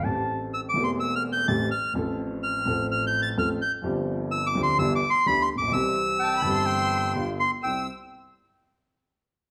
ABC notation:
X:1
M:4/4
L:1/16
Q:1/4=126
K:C
V:1 name="Bandoneon"
z4 (3e'2 d'2 c'2 (3e'2 f'2 g'2 a'2 f'2 | z4 f'4 (3f'2 g'2 a'2 f'2 g'2 | z4 (3e'2 d'2 c'2 (3e'2 d'2 c'2 (3b2 c'2 d'2 | e'12 z2 c'2 |
e'2 z12 z2 |]
V:2 name="Violin section"
z16 | z16 | z16 | z4 (3a2 b2 c'2- c'4- c' z3 |
e'2 z12 z2 |]
V:3 name="Clarinet"
a3 z12 z | z16 | z16 | z4 g2 a2 g4- g z3 |
g2 z12 z2 |]
V:4 name="Grand piano" clef=bass
[A,,,A,,E,A,CG]6 [E,,,E,,E,A,CG]6 [A,,,A,,E,A,CG]2 z2 | [A,,,A,,F,A,CA]6 [A,,,A,,F,A,CA]6 [A,,,A,,F,A,CA]2 z2 | [G,,,G,,F,CDG]6 [D,,D,F,CDG]2 [G,,,G,,E,B,DG]2 z2 [D,,D,E,B,DG]2 z/2 A,,,/2 _B,,,/2 =B,,,/2 | [C,,C,E,G,CG]6 [G,,,G,,E,G,CG]6 [G,,,G,,D,G,B,F]2 z2 |
[C,,G,CE]2 z12 z2 |]